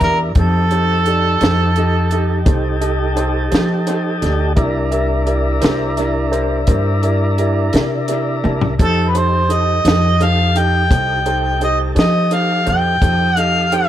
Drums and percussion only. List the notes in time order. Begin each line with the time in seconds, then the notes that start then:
0.01 snare, closed hi-hat
0.35 kick, closed hi-hat
0.71 closed hi-hat
1.06 closed hi-hat
1.41 snare, closed hi-hat
1.76 closed hi-hat
2.11 closed hi-hat
2.46 kick, closed hi-hat
2.82 closed hi-hat
3.17 closed hi-hat
3.52 snare, closed hi-hat
3.87 closed hi-hat
4.22 snare, closed hi-hat
4.57 kick, closed hi-hat
4.92 closed hi-hat
5.27 closed hi-hat
5.62 snare, closed hi-hat
5.97 closed hi-hat
6.33 closed hi-hat
6.67 kick, closed hi-hat
7.03 closed hi-hat
7.38 closed hi-hat
7.73 snare, closed hi-hat
8.08 closed hi-hat
8.44 high tom
8.61 floor tom
8.79 kick, closed hi-hat
9.15 closed hi-hat
9.50 closed hi-hat
9.85 snare, closed hi-hat
10.21 closed hi-hat
10.56 closed hi-hat
10.91 kick, closed hi-hat
11.26 closed hi-hat
11.61 closed hi-hat
11.96 snare, closed hi-hat
12.31 closed hi-hat
12.67 closed hi-hat
13.02 kick, closed hi-hat
13.37 closed hi-hat
13.72 closed hi-hat